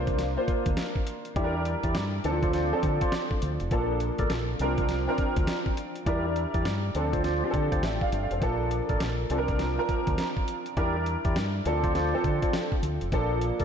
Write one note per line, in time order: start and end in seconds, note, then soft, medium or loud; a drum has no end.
0.00 0.36 C2 loud
0.00 0.33 A#3 medium
0.00 0.34 D4 medium
0.00 0.34 F4 medium
0.00 0.34 C5 loud
0.07 kick medium
0.07 closed hi-hat medium
0.19 snare medium
0.19 closed hi-hat medium
0.36 1.31 A#3 medium
0.36 1.32 D4 medium
0.36 1.32 F4 medium
0.36 1.32 C5 loud
0.48 kick medium
0.48 closed hi-hat medium
0.66 0.75 D2 medium
0.66 kick medium
0.66 closed hi-hat medium
0.77 snare loud
0.77 closed hi-hat medium
0.96 kick medium
1.07 closed hi-hat medium
1.25 closed hi-hat medium
1.36 1.74 E2 loud
1.36 2.20 G3 medium
1.36 2.21 D4 medium
1.36 1.55 E4 medium
1.36 2.21 E4 medium
1.36 1.56 G4 medium
1.36 1.45 A4 medium
1.36 1.56 D5 medium
1.36 kick loud
1.36 closed hi-hat medium
1.44 2.24 A#4 loud
1.65 closed hi-hat medium
1.83 1.93 E2 medium
1.83 1.97 E4 medium
1.83 1.97 G4 medium
1.83 1.97 D5 medium
1.83 kick medium
1.83 closed hi-hat medium
1.95 2.19 G2 medium
1.95 snare loud
1.95 closed hi-hat medium
2.24 2.71 D2 loud
2.24 2.32 E3 medium
2.24 2.69 C4 medium
2.24 2.69 D4 medium
2.24 2.69 A4 loud
2.24 closed hi-hat medium
2.31 2.70 F3 medium
2.42 2.52 F4 medium
2.42 2.53 C5 medium
2.42 2.53 D5 medium
2.42 kick medium
2.42 closed hi-hat soft
2.53 2.73 F4 medium
2.53 2.73 C5 medium
2.53 2.73 D5 medium
2.53 snare medium
2.53 closed hi-hat medium
2.72 3.67 F3 medium
2.72 3.67 C4 medium
2.72 3.67 D4 medium
2.72 3.67 A4 loud
2.83 2.98 D3 loud
2.83 kick medium
2.83 closed hi-hat medium
3.01 3.14 F4 medium
3.01 3.14 C5 medium
3.01 3.15 D5 medium
3.01 kick medium
3.01 closed hi-hat medium
3.12 snare loud
3.12 closed hi-hat medium
3.31 kick medium
3.42 3.57 D2 loud
3.42 closed hi-hat medium
3.60 3.69 F1 medium
3.60 closed hi-hat medium
3.71 4.10 A#1 loud
3.71 4.55 F3 medium
3.71 4.56 A#3 medium
3.71 4.56 D4 medium
3.71 4.56 A4 loud
3.71 kick loud
3.71 closed hi-hat medium
4.00 closed hi-hat medium
4.18 4.28 A1 medium
4.18 4.32 A4 medium
4.18 4.32 A#4 medium
4.18 4.32 D5 medium
4.18 kick medium
4.18 closed hi-hat medium
4.30 4.54 A#1 medium
4.30 snare loud
4.30 closed hi-hat medium
4.59 5.07 C2 loud
4.59 5.05 F3 medium
4.59 5.05 C4 medium
4.59 5.05 D4 medium
4.59 5.05 A#4 medium
4.59 closed hi-hat medium
4.78 kick loud
4.78 closed hi-hat medium
4.89 snare medium
4.89 closed hi-hat medium
5.07 6.02 F3 medium
5.07 6.02 C4 medium
5.07 6.03 D4 medium
5.07 6.03 A#4 loud
5.18 kick medium
5.18 closed hi-hat medium
5.36 5.45 D2 medium
5.36 kick medium
5.36 closed hi-hat medium
5.47 snare loud
5.47 closed hi-hat medium
5.66 kick medium
5.77 closed hi-hat medium
5.96 closed hi-hat medium
6.06 6.45 E2 loud
6.06 6.91 G3 medium
6.06 6.91 D4 medium
6.06 6.26 E4 medium
6.06 6.91 E4 medium
6.06 6.26 G4 medium
6.06 6.92 A#4 medium
6.06 6.26 D5 medium
6.06 kick loud
6.06 closed hi-hat medium
6.36 closed hi-hat medium
6.54 6.66 E2 medium
6.54 6.67 E4 medium
6.54 6.67 G4 medium
6.54 6.67 D5 medium
6.54 kick medium
6.54 closed hi-hat medium
6.65 6.89 G2 medium
6.65 snare loud
6.65 closed hi-hat medium
6.95 7.42 D2 medium
6.95 7.39 F3 medium
6.95 7.40 C4 medium
6.95 7.40 D4 medium
6.95 7.40 A4 medium
6.95 closed hi-hat medium
7.13 7.23 F4 medium
7.13 7.23 C5 medium
7.13 7.23 D5 medium
7.13 kick medium
7.13 closed hi-hat medium
7.24 7.44 F4 medium
7.24 7.44 C5 medium
7.24 7.44 D5 medium
7.24 snare medium
7.24 closed hi-hat medium
7.43 8.37 F3 medium
7.43 8.38 C4 medium
7.43 8.38 D4 medium
7.43 7.48 G4 medium
7.51 7.68 D3 medium
7.51 7.87 A4 medium
7.51 7.81 A5 medium
7.51 kick loud
7.51 closed hi-hat medium
7.71 7.81 D2 medium
7.71 7.85 F4 medium
7.71 7.85 C5 medium
7.71 7.85 D5 medium
7.71 kick loud
7.71 closed hi-hat medium
7.83 7.98 A1 loud
7.83 8.01 E5 medium
7.83 8.02 G5 medium
7.83 snare loud
7.83 closed hi-hat medium
8.01 8.11 D5 medium
8.01 8.21 F5 medium
8.01 kick medium
8.12 8.27 G1 medium
8.12 8.30 D5 medium
8.12 closed hi-hat medium
8.23 8.41 F5 medium
8.31 8.40 F1 medium
8.31 8.42 A4 soft
8.31 8.59 C5 medium
8.31 closed hi-hat medium
8.42 8.80 A#1 loud
8.42 9.26 F3 medium
8.42 9.26 A#3 medium
8.42 9.27 D4 medium
8.42 9.27 A4 loud
8.42 kick loud
8.42 closed hi-hat medium
8.71 closed hi-hat medium
8.89 8.98 A1 medium
8.89 9.02 A4 medium
8.89 9.02 A#4 medium
8.89 9.02 D5 medium
8.89 kick medium
8.89 closed hi-hat soft
9.00 9.24 A#1 medium
9.00 snare loud
9.00 closed hi-hat medium
9.30 9.77 C2 loud
9.30 9.75 F3 medium
9.30 9.75 C4 medium
9.30 9.75 D4 medium
9.30 9.39 A4 medium
9.30 closed hi-hat medium
9.38 9.78 A#4 loud
9.48 kick medium
9.48 closed hi-hat medium
9.59 snare medium
9.59 closed hi-hat medium
9.78 10.73 F3 medium
9.78 10.73 C4 medium
9.78 10.73 D4 medium
9.78 10.73 A#4 loud
9.89 kick medium
9.89 closed hi-hat medium
10.07 10.16 D2 medium
10.07 kick loud
10.07 closed hi-hat medium
10.18 snare loud
10.18 closed hi-hat medium
10.37 kick medium
10.48 closed hi-hat medium
10.66 closed hi-hat medium
10.77 11.15 E2 loud
10.77 11.61 G3 medium
10.77 11.62 D4 medium
10.77 10.96 E4 medium
10.77 11.62 E4 medium
10.77 10.97 G4 medium
10.77 11.62 A#4 loud
10.77 10.97 D5 medium
10.77 kick loud
10.77 closed hi-hat medium
11.06 closed hi-hat medium
11.25 11.34 E2 medium
11.25 11.38 E4 medium
11.25 11.38 G4 medium
11.25 11.38 D5 medium
11.25 kick medium
11.25 closed hi-hat medium
11.36 11.60 G2 medium
11.36 snare loud
11.36 closed hi-hat medium
11.65 12.13 D2 loud
11.65 12.10 F3 medium
11.65 12.10 C4 medium
11.65 12.11 D4 medium
11.65 12.11 A4 loud
11.65 closed hi-hat medium
11.83 11.93 F4 medium
11.83 11.94 C5 medium
11.83 11.94 D5 medium
11.83 kick medium
11.83 closed hi-hat medium
11.95 12.14 F4 medium
11.95 12.14 C5 medium
11.95 12.15 D5 medium
11.95 snare medium
11.95 closed hi-hat medium
12.13 13.08 F3 medium
12.13 13.08 C4 medium
12.13 13.09 D4 medium
12.13 13.09 A4 loud
12.24 12.39 D3 medium
12.24 kick medium
12.24 closed hi-hat medium
12.42 12.55 F4 medium
12.42 12.55 C5 medium
12.42 12.56 D5 medium
12.42 kick loud
12.42 closed hi-hat medium
12.53 snare loud
12.53 closed hi-hat medium
12.72 kick medium
12.83 12.98 D2 medium
12.83 closed hi-hat medium
13.01 13.10 F1 medium
13.01 closed hi-hat medium
13.12 13.50 A#1 loud
13.12 13.64 F3 medium
13.12 13.64 A#3 medium
13.12 13.64 D4 medium
13.12 13.64 A4 loud
13.12 kick loud
13.12 closed hi-hat medium
13.41 closed hi-hat medium
13.60 13.64 A1 medium
13.60 13.64 A4 medium
13.60 13.64 A#4 medium
13.60 13.64 D5 medium
13.60 kick medium
13.60 closed hi-hat medium